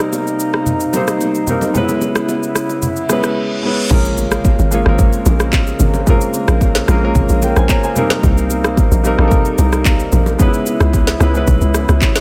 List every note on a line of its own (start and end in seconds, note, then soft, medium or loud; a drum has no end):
0.00 1.72 C3 medium
0.00 0.18 G3 medium
0.00 0.18 A#3 medium
0.00 1.72 A#3 medium
0.00 0.18 C4 medium
0.00 0.19 D#4 medium
0.00 1.72 D#4 medium
0.00 0.23 A#4 loud
0.00 cross-stick loud
0.13 high bongo medium
0.13 shaker medium
0.27 shaker medium
0.40 shaker medium
0.53 cross-stick medium
0.53 high bongo soft
0.66 low conga medium
0.66 shaker medium
0.80 shaker medium
0.93 1.37 G3 medium
0.93 1.37 A#3 medium
0.93 1.38 C4 medium
0.93 1.38 D#4 medium
0.93 1.39 C5 medium
0.93 low bongo medium
0.93 shaker loud
1.07 cross-stick medium
1.07 shaker medium
1.21 high bongo medium
1.21 shaker medium
1.35 shaker medium
1.47 1.69 G3 medium
1.47 1.69 A#3 medium
1.47 1.70 C4 medium
1.47 1.70 D#4 medium
1.47 1.71 A#4 medium
1.47 low conga medium
1.47 shaker medium
1.61 low bongo medium
1.61 shaker soft
1.74 3.74 C#3 medium
1.74 2.61 G#3 medium
1.74 3.74 B3 medium
1.74 2.61 B3 medium
1.74 2.62 C#4 medium
1.74 1.82 D#4 medium
1.74 3.74 E4 medium
1.74 2.63 B4 medium
1.74 low conga medium
1.74 shaker medium
1.83 2.66 E4 medium
1.89 low bongo medium
1.89 shaker medium
2.01 high bongo medium
2.01 low bongo medium
2.01 shaker medium
2.15 cross-stick loud
2.15 shaker soft
2.29 high bongo medium
2.29 shaker medium
2.43 shaker medium
2.55 cross-stick medium
2.55 shaker medium
2.69 high bongo soft
2.69 shaker medium
2.82 reverse cymbal medium
2.82 low conga medium
2.82 shaker medium
2.96 shaker medium
3.09 3.53 G#3 medium
3.09 3.53 B3 medium
3.09 3.54 C#4 medium
3.09 3.54 E4 medium
3.09 3.55 B4 medium
3.09 cross-stick medium
3.09 low bongo medium
3.09 shaker loud
3.23 cross-stick medium
3.23 shaker medium
3.63 3.85 G#3 medium
3.63 3.86 B3 medium
3.63 3.86 C#4 medium
3.63 3.87 E4 medium
3.63 3.87 B4 medium
3.90 4.55 A#1 loud
3.90 7.92 C#3 medium
3.90 4.56 G#3 medium
3.90 7.92 G#3 medium
3.90 10.35 A#3 medium
3.90 4.56 A#3 medium
3.90 4.57 C#4 medium
3.90 4.57 F4 medium
3.90 4.57 A#4 medium
3.90 kick loud
3.90 crash loud
3.90 impact medium
3.90 low conga medium
3.90 shaker medium
4.05 shaker medium
4.17 high bongo medium
4.17 shaker medium
4.31 cross-stick loud
4.31 shaker medium
4.45 kick medium
4.45 high bongo medium
4.45 shaker medium
4.59 4.83 G#1 medium
4.59 shaker medium
4.71 4.83 G#3 medium
4.71 4.83 A#3 medium
4.71 4.84 C#4 medium
4.71 4.84 F4 medium
4.71 4.84 C#5 loud
4.71 shaker medium
4.85 5.10 G#1 medium
4.85 5.72 G#3 medium
4.85 5.72 A#3 medium
4.85 4.93 C4 medium
4.85 5.73 F4 medium
4.85 5.74 A#4 medium
4.85 cross-stick medium
4.93 5.76 C#4 medium
4.98 kick loud
4.98 low conga medium
4.98 shaker medium
5.13 shaker medium
5.26 5.74 A#1 loud
5.26 low bongo medium
5.26 shaker loud
5.40 cross-stick loud
5.40 shaker medium
5.53 kick medium
5.53 clap medium
5.53 high bongo medium
5.53 shaker medium
5.67 shaker medium
5.79 6.04 G#1 medium
5.79 low conga medium
5.79 shaker medium
5.94 low bongo medium
5.94 shaker soft
6.06 6.72 G#3 medium
6.06 6.72 A#3 medium
6.06 6.14 C4 medium
6.06 6.73 F4 medium
6.06 6.74 A#4 loud
6.06 kick loud
6.06 low conga medium
6.06 shaker medium
6.14 6.76 C#4 medium
6.21 shaker medium
6.34 high bongo medium
6.34 shaker medium
6.48 6.84 A#1 medium
6.48 cross-stick loud
6.48 shaker medium
6.61 kick medium
6.61 high bongo medium
6.61 shaker medium
6.75 snare medium
6.75 shaker medium
6.87 7.12 A#1 loud
6.87 6.99 G#3 medium
6.87 6.99 A#3 medium
6.87 7.00 C#4 medium
6.87 7.00 F4 medium
6.87 7.01 A#4 medium
6.87 cross-stick medium
6.87 shaker medium
7.01 7.88 G#3 medium
7.01 7.88 A#3 medium
7.01 7.89 C#4 medium
7.01 7.89 F4 medium
7.01 7.42 A#4 loud
7.15 7.28 G#1 loud
7.15 kick loud
7.15 low conga medium
7.15 shaker medium
7.29 7.54 A#1 medium
7.29 shaker medium
7.42 7.56 A#4 medium
7.42 7.56 G5 medium
7.42 low bongo medium
7.42 shaker loud
7.56 7.68 A#1 medium
7.56 7.69 C5 medium
7.56 7.69 G#5 medium
7.56 cross-stick medium
7.56 shaker medium
7.69 7.83 C#5 medium
7.69 7.83 A#5 medium
7.69 kick medium
7.69 clap medium
7.69 high bongo medium
7.69 shaker medium
7.83 8.10 C5 medium
7.83 8.09 G#5 medium
7.83 shaker medium
7.95 10.37 C3 medium
7.95 8.82 G3 medium
7.95 8.83 A#3 medium
7.95 8.83 C4 medium
7.95 10.37 D#4 medium
7.95 8.84 D#4 medium
7.95 8.84 A#4 medium
7.95 low conga medium
7.95 shaker medium
8.10 snare medium
8.10 low bongo medium
8.10 shaker soft
8.23 8.88 C2 loud
8.23 kick loud
8.23 low conga medium
8.23 shaker medium
8.38 shaker medium
8.50 high bongo medium
8.50 shaker medium
8.64 cross-stick loud
8.64 shaker medium
8.77 kick medium
8.77 high bongo medium
8.77 shaker medium
8.91 9.16 A#1 medium
8.91 shaker medium
9.03 9.15 G3 medium
9.03 9.16 A#3 medium
9.03 9.16 C4 medium
9.03 9.16 D#4 medium
9.03 9.17 A#4 loud
9.03 shaker medium
9.18 9.43 A#1 medium
9.18 10.04 G3 medium
9.18 10.05 A#3 medium
9.18 10.05 C4 medium
9.18 10.06 D#4 medium
9.18 9.26 A4 medium
9.18 cross-stick medium
9.28 10.09 A#4 loud
9.28 kick loud
9.28 low conga medium
9.28 shaker medium
9.45 shaker medium
9.58 10.07 C2 medium
9.58 low bongo medium
9.58 shaker loud
9.72 cross-stick medium
9.72 shaker medium
9.85 kick medium
9.85 clap medium
9.85 high bongo medium
9.85 shaker medium
10.00 shaker medium
10.12 10.37 A#1 medium
10.12 low conga medium
10.12 shaker medium
10.26 low bongo medium
10.26 shaker soft
10.38 12.21 C#3 medium
10.38 11.04 G#3 medium
10.38 11.05 B3 medium
10.38 12.21 B3 medium
10.38 11.05 C#4 medium
10.38 10.47 D#4 medium
10.38 12.21 E4 medium
10.38 11.06 B4 medium
10.38 kick loud
10.38 low conga medium
10.38 shaker medium
10.48 11.09 E4 medium
10.54 shaker medium
10.66 high bongo medium
10.66 shaker medium
10.80 11.16 C#2 loud
10.80 cross-stick loud
10.80 shaker medium
10.93 kick medium
10.93 high bongo medium
10.93 shaker medium
11.07 snare medium
11.07 shaker medium
11.20 11.45 C#2 loud
11.20 11.31 G#3 medium
11.20 11.32 B3 medium
11.20 11.32 C#4 medium
11.20 11.33 E4 medium
11.20 11.33 B4 medium
11.20 cross-stick medium
11.20 shaker medium
11.34 12.20 G#3 medium
11.34 12.21 B3 medium
11.34 12.21 C#4 medium
11.34 12.21 E4 medium
11.34 12.21 B4 medium
11.34 shaker medium
11.47 11.60 B1 loud
11.47 kick loud
11.47 low conga medium
11.47 shaker medium
11.61 11.86 C#2 medium
11.61 shaker medium
11.74 cross-stick loud
11.74 low bongo medium
11.74 shaker loud
11.89 12.00 C#2 medium
11.89 cross-stick medium
11.89 shaker medium
12.01 kick medium
12.01 clap medium
12.01 high bongo medium
12.01 shaker medium
12.16 snare medium
12.16 shaker medium